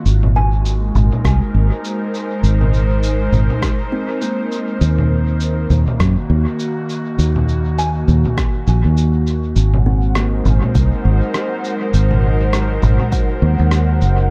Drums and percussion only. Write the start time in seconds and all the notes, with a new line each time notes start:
0.06 shaker
0.23 low conga
0.65 shaker
0.95 low conga, shaker
1.12 low conga
1.25 kick, cross-stick, shaker
1.85 shaker
2.14 shaker
2.44 shaker
2.61 low conga
2.74 shaker
3.03 shaker
3.33 low conga, shaker
3.50 low conga
3.62 kick, cross-stick, shaker
4.22 shaker
4.52 shaker
4.81 shaker
4.98 low conga
5.40 shaker
5.70 low conga, shaker
5.88 low conga
6.00 kick, cross-stick, shaker
6.59 shaker
6.89 shaker
7.19 shaker
7.36 low conga
7.49 shaker
7.78 shaker
8.08 low conga, shaker
8.25 low conga
8.37 kick, cross-stick, shaker
8.67 shaker
8.97 shaker
9.27 shaker
9.56 shaker
9.74 low conga
10.15 cross-stick, shaker
10.45 low conga, shaker
10.63 low conga
10.75 kick, shaker
11.34 cross-stick, shaker
11.64 shaker
11.94 shaker
12.11 low conga
12.53 cross-stick, shaker
12.82 low conga, shaker
13.00 low conga
13.12 kick, shaker
13.71 cross-stick, shaker
14.01 shaker